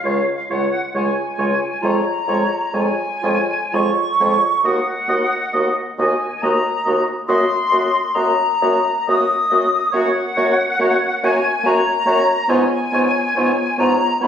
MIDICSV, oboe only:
0, 0, Header, 1, 2, 480
1, 0, Start_track
1, 0, Tempo, 896861
1, 982, Time_signature, 3, 2, 24, 8
1, 1466, Tempo, 998336
1, 1946, Tempo, 898204
1, 3386, Tempo, 859599
1, 4346, Tempo, 931677
1, 4826, Tempo, 858369
1, 7729, End_track
2, 0, Start_track
2, 0, Title_t, "Oboe"
2, 0, Program_c, 0, 68
2, 29, Note_on_c, 0, 73, 54
2, 115, Note_off_c, 0, 73, 0
2, 270, Note_on_c, 0, 73, 49
2, 356, Note_off_c, 0, 73, 0
2, 508, Note_on_c, 0, 73, 54
2, 594, Note_off_c, 0, 73, 0
2, 741, Note_on_c, 0, 73, 50
2, 826, Note_off_c, 0, 73, 0
2, 986, Note_on_c, 0, 73, 60
2, 1071, Note_off_c, 0, 73, 0
2, 1222, Note_on_c, 0, 73, 56
2, 1308, Note_off_c, 0, 73, 0
2, 1466, Note_on_c, 0, 73, 54
2, 1543, Note_off_c, 0, 73, 0
2, 1710, Note_on_c, 0, 73, 51
2, 1787, Note_off_c, 0, 73, 0
2, 1951, Note_on_c, 0, 73, 59
2, 2037, Note_off_c, 0, 73, 0
2, 2195, Note_on_c, 0, 73, 54
2, 2281, Note_off_c, 0, 73, 0
2, 2433, Note_on_c, 0, 75, 65
2, 2518, Note_off_c, 0, 75, 0
2, 2667, Note_on_c, 0, 75, 61
2, 2752, Note_off_c, 0, 75, 0
2, 2904, Note_on_c, 0, 75, 66
2, 2989, Note_off_c, 0, 75, 0
2, 3150, Note_on_c, 0, 75, 56
2, 3235, Note_off_c, 0, 75, 0
2, 3385, Note_on_c, 0, 75, 64
2, 3474, Note_off_c, 0, 75, 0
2, 3620, Note_on_c, 0, 75, 59
2, 3710, Note_off_c, 0, 75, 0
2, 3861, Note_on_c, 0, 75, 71
2, 3951, Note_off_c, 0, 75, 0
2, 4099, Note_on_c, 0, 75, 70
2, 4188, Note_off_c, 0, 75, 0
2, 4345, Note_on_c, 0, 75, 68
2, 4427, Note_off_c, 0, 75, 0
2, 4585, Note_on_c, 0, 75, 64
2, 4668, Note_off_c, 0, 75, 0
2, 4821, Note_on_c, 0, 75, 76
2, 4910, Note_off_c, 0, 75, 0
2, 5060, Note_on_c, 0, 75, 68
2, 5150, Note_off_c, 0, 75, 0
2, 5294, Note_on_c, 0, 73, 80
2, 5383, Note_off_c, 0, 73, 0
2, 5545, Note_on_c, 0, 73, 71
2, 5634, Note_off_c, 0, 73, 0
2, 5791, Note_on_c, 0, 73, 78
2, 5881, Note_off_c, 0, 73, 0
2, 6035, Note_on_c, 0, 73, 71
2, 6125, Note_off_c, 0, 73, 0
2, 6270, Note_on_c, 0, 73, 80
2, 6360, Note_off_c, 0, 73, 0
2, 6493, Note_on_c, 0, 73, 74
2, 6583, Note_off_c, 0, 73, 0
2, 6732, Note_on_c, 0, 73, 84
2, 6821, Note_off_c, 0, 73, 0
2, 6983, Note_on_c, 0, 73, 74
2, 7073, Note_off_c, 0, 73, 0
2, 7220, Note_on_c, 0, 73, 74
2, 7309, Note_off_c, 0, 73, 0
2, 7454, Note_on_c, 0, 73, 76
2, 7544, Note_off_c, 0, 73, 0
2, 7696, Note_on_c, 0, 73, 84
2, 7729, Note_off_c, 0, 73, 0
2, 7729, End_track
0, 0, End_of_file